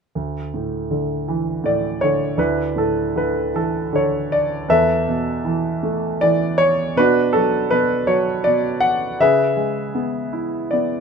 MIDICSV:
0, 0, Header, 1, 2, 480
1, 0, Start_track
1, 0, Tempo, 746269
1, 95, Time_signature, 3, 2, 24, 8
1, 1530, Tempo, 770218
1, 3450, Tempo, 749064
1, 6330, Tempo, 785340
1, 6971, End_track
2, 0, Start_track
2, 0, Title_t, "Grand piano"
2, 0, Program_c, 0, 0
2, 99, Note_on_c, 0, 38, 33
2, 224, Control_c, 0, 64, 127
2, 347, Note_on_c, 0, 45, 33
2, 583, Note_on_c, 0, 50, 37
2, 826, Note_on_c, 0, 52, 40
2, 1044, Note_off_c, 0, 45, 0
2, 1053, Note_on_c, 0, 45, 43
2, 1066, Note_on_c, 0, 74, 65
2, 1294, Note_on_c, 0, 73, 72
2, 1295, Note_off_c, 0, 50, 0
2, 1303, Note_off_c, 0, 74, 0
2, 1304, Note_on_c, 0, 50, 45
2, 1507, Note_off_c, 0, 38, 0
2, 1512, Note_off_c, 0, 52, 0
2, 1516, Note_off_c, 0, 45, 0
2, 1528, Note_on_c, 0, 38, 42
2, 1529, Note_on_c, 0, 62, 45
2, 1531, Note_off_c, 0, 50, 0
2, 1533, Note_on_c, 0, 64, 44
2, 1536, Note_on_c, 0, 71, 64
2, 1539, Note_off_c, 0, 73, 0
2, 1539, Control_c, 0, 64, 0
2, 1658, Control_c, 0, 64, 127
2, 1767, Note_on_c, 0, 45, 35
2, 1778, Note_off_c, 0, 71, 0
2, 1781, Note_on_c, 0, 69, 50
2, 2016, Note_on_c, 0, 50, 40
2, 2023, Note_off_c, 0, 69, 0
2, 2026, Note_on_c, 0, 71, 59
2, 2226, Note_off_c, 0, 62, 0
2, 2228, Note_off_c, 0, 64, 0
2, 2255, Note_on_c, 0, 52, 35
2, 2265, Note_on_c, 0, 69, 53
2, 2267, Note_off_c, 0, 71, 0
2, 2483, Note_off_c, 0, 69, 0
2, 2486, Note_off_c, 0, 50, 0
2, 2496, Note_on_c, 0, 50, 43
2, 2513, Note_on_c, 0, 73, 64
2, 2708, Note_off_c, 0, 45, 0
2, 2741, Note_on_c, 0, 74, 73
2, 2750, Note_off_c, 0, 73, 0
2, 2948, Note_off_c, 0, 38, 0
2, 2955, Note_off_c, 0, 52, 0
2, 2962, Note_off_c, 0, 50, 0
2, 2968, Note_on_c, 0, 40, 50
2, 2973, Note_on_c, 0, 71, 55
2, 2976, Note_on_c, 0, 69, 60
2, 2976, Note_on_c, 0, 76, 84
2, 2984, Control_c, 0, 64, 0
2, 2986, Note_off_c, 0, 74, 0
2, 3075, Control_c, 0, 64, 127
2, 3215, Note_on_c, 0, 47, 46
2, 3443, Note_on_c, 0, 52, 48
2, 3686, Note_on_c, 0, 57, 44
2, 3906, Note_off_c, 0, 71, 0
2, 3908, Note_off_c, 0, 69, 0
2, 3908, Note_off_c, 0, 76, 0
2, 3932, Note_off_c, 0, 52, 0
2, 3932, Note_on_c, 0, 74, 84
2, 3941, Note_on_c, 0, 52, 50
2, 4151, Note_off_c, 0, 47, 0
2, 4159, Note_off_c, 0, 74, 0
2, 4167, Note_on_c, 0, 73, 89
2, 4387, Note_off_c, 0, 40, 0
2, 4393, Note_off_c, 0, 57, 0
2, 4395, Note_off_c, 0, 73, 0
2, 4407, Note_off_c, 0, 52, 0
2, 4415, Note_on_c, 0, 47, 62
2, 4421, Note_on_c, 0, 71, 93
2, 4425, Control_c, 0, 64, 0
2, 4430, Note_on_c, 0, 66, 59
2, 4431, Note_on_c, 0, 62, 62
2, 4545, Control_c, 0, 64, 127
2, 4647, Note_on_c, 0, 69, 77
2, 4664, Note_off_c, 0, 71, 0
2, 4666, Note_on_c, 0, 54, 49
2, 4888, Note_off_c, 0, 47, 0
2, 4889, Note_on_c, 0, 71, 82
2, 4894, Note_off_c, 0, 69, 0
2, 4898, Note_on_c, 0, 47, 51
2, 5109, Note_off_c, 0, 62, 0
2, 5109, Note_off_c, 0, 66, 0
2, 5115, Note_off_c, 0, 54, 0
2, 5124, Note_on_c, 0, 73, 73
2, 5125, Note_on_c, 0, 54, 46
2, 5134, Note_off_c, 0, 71, 0
2, 5360, Note_on_c, 0, 74, 77
2, 5368, Note_off_c, 0, 47, 0
2, 5372, Note_off_c, 0, 73, 0
2, 5378, Note_on_c, 0, 47, 46
2, 5594, Note_on_c, 0, 78, 89
2, 5611, Note_off_c, 0, 74, 0
2, 5823, Note_off_c, 0, 54, 0
2, 5823, Note_off_c, 0, 78, 0
2, 5838, Note_off_c, 0, 47, 0
2, 5848, Note_on_c, 0, 49, 49
2, 5850, Note_on_c, 0, 76, 88
2, 5855, Control_c, 0, 64, 0
2, 5855, Note_on_c, 0, 68, 58
2, 5859, Note_on_c, 0, 71, 59
2, 5972, Control_c, 0, 64, 127
2, 6081, Note_on_c, 0, 56, 42
2, 6325, Note_on_c, 0, 59, 43
2, 6559, Note_on_c, 0, 64, 39
2, 6786, Note_off_c, 0, 76, 0
2, 6788, Note_off_c, 0, 68, 0
2, 6790, Note_off_c, 0, 71, 0
2, 6790, Note_on_c, 0, 74, 63
2, 6794, Note_off_c, 0, 59, 0
2, 6803, Note_on_c, 0, 59, 39
2, 6971, Note_off_c, 0, 49, 0
2, 6971, Note_off_c, 0, 56, 0
2, 6971, Note_off_c, 0, 59, 0
2, 6971, Note_off_c, 0, 64, 0
2, 6971, Note_off_c, 0, 74, 0
2, 6971, End_track
0, 0, End_of_file